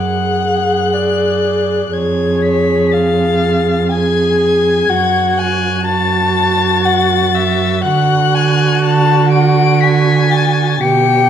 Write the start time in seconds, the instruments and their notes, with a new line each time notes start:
Already playing: cello F#2, viola G#4, violin F#5 F#6
0.94 violin D5
1.92 cello F2, viola G#4, violin C#5 G#6
2.42 violin B6
2.93 violin F5 A6
3.91 viola G#4, violin G#5 G#6
4.40 violin G#6
4.89 cello F#2, viola F#4, violin F#5
5.38 violin G#5 F#6
5.85 viola F#4, violin A5 A6
6.85 violin F#5
7.35 violin E5
7.83 cello D3, viola F#4, violin F#5 F#6
8.34 violin G#5
8.84 violin A5
9.31 violin D7
9.35 violin F#5
9.81 violin G#5 B6
10.32 violin A6
10.81 cello B2, viola G4, violin G5 C#7